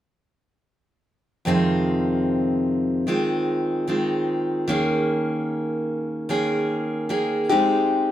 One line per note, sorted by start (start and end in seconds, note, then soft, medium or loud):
1.45 3.07 F2 medium
1.45 3.07 C3 medium
1.45 3.06 D#3 medium
1.45 3.07 G#3 medium
1.45 3.07 C4 medium
1.45 3.08 F4 medium
3.07 3.87 D#3 soft
3.07 3.88 G#3 medium
3.07 3.88 C4 medium
3.07 3.88 F4 medium
3.88 4.67 D#3 soft
3.88 4.68 G#3 soft
3.88 4.69 C4 medium
3.88 4.69 F4 soft
4.68 6.29 D#3 medium
4.68 6.29 A#3 medium
4.68 6.29 C#4 medium
4.68 6.30 G#4 medium
6.29 7.09 D#3 medium
6.29 7.09 A#3 medium
6.29 7.09 C#4 medium
6.29 7.10 G#4 medium
7.09 7.49 D#3 soft
7.09 7.50 A#3 medium
7.09 7.50 C#4 medium
7.09 7.49 G#4 medium
7.49 8.12 G#3 medium
7.49 8.12 C4 medium
7.49 8.12 D#4 medium
7.49 8.12 G4 medium